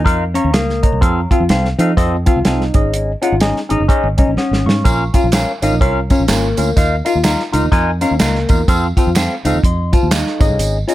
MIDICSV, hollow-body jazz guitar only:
0, 0, Header, 1, 2, 480
1, 0, Start_track
1, 0, Tempo, 478851
1, 1020, Time_signature, 4, 2, 24, 8
1, 10971, End_track
2, 0, Start_track
2, 0, Title_t, "Hollow-body jazz guitar"
2, 0, Program_c, 0, 26
2, 345, Note_on_c, 0, 61, 71
2, 491, Note_off_c, 0, 61, 0
2, 541, Note_on_c, 0, 58, 65
2, 992, Note_off_c, 0, 58, 0
2, 1312, Note_on_c, 0, 65, 76
2, 1456, Note_off_c, 0, 65, 0
2, 1790, Note_on_c, 0, 63, 87
2, 1935, Note_off_c, 0, 63, 0
2, 2270, Note_on_c, 0, 65, 73
2, 2415, Note_off_c, 0, 65, 0
2, 2462, Note_on_c, 0, 63, 63
2, 2914, Note_off_c, 0, 63, 0
2, 3232, Note_on_c, 0, 65, 72
2, 3377, Note_off_c, 0, 65, 0
2, 3715, Note_on_c, 0, 63, 82
2, 3860, Note_off_c, 0, 63, 0
2, 4200, Note_on_c, 0, 61, 70
2, 4342, Note_off_c, 0, 61, 0
2, 4388, Note_on_c, 0, 61, 64
2, 4838, Note_off_c, 0, 61, 0
2, 5159, Note_on_c, 0, 65, 73
2, 5302, Note_off_c, 0, 65, 0
2, 5642, Note_on_c, 0, 63, 78
2, 5784, Note_off_c, 0, 63, 0
2, 6125, Note_on_c, 0, 61, 71
2, 6265, Note_off_c, 0, 61, 0
2, 6312, Note_on_c, 0, 58, 63
2, 6760, Note_off_c, 0, 58, 0
2, 7081, Note_on_c, 0, 65, 73
2, 7223, Note_off_c, 0, 65, 0
2, 7562, Note_on_c, 0, 63, 83
2, 7703, Note_off_c, 0, 63, 0
2, 8033, Note_on_c, 0, 61, 73
2, 8178, Note_off_c, 0, 61, 0
2, 8222, Note_on_c, 0, 58, 62
2, 8674, Note_off_c, 0, 58, 0
2, 8989, Note_on_c, 0, 65, 74
2, 9135, Note_off_c, 0, 65, 0
2, 9471, Note_on_c, 0, 63, 84
2, 9616, Note_off_c, 0, 63, 0
2, 9951, Note_on_c, 0, 65, 72
2, 10095, Note_off_c, 0, 65, 0
2, 10139, Note_on_c, 0, 63, 60
2, 10590, Note_off_c, 0, 63, 0
2, 10902, Note_on_c, 0, 65, 77
2, 10971, Note_off_c, 0, 65, 0
2, 10971, End_track
0, 0, End_of_file